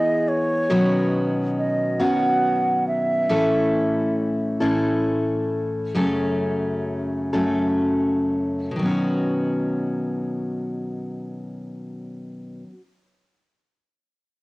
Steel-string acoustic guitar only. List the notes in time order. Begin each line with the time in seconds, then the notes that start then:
Already playing: E3 G#3 B3 E4 G#4
0.70 B2 D#3 F#3 B3 C#4 F#4
1.99 B2 D#3 F#3 B3 C#4 F#4
3.29 A2 E3 A3 C#4 E4 A4
4.60 A2 E3 A3 C#4 E4 A4
5.95 F#2 C#3 F#3 A3 C#4 A4
7.33 F#2 C#3 F#3 A3 C#4 A4
8.71 B2
8.76 D#3 F#3
8.83 B3 C#4
8.89 F#4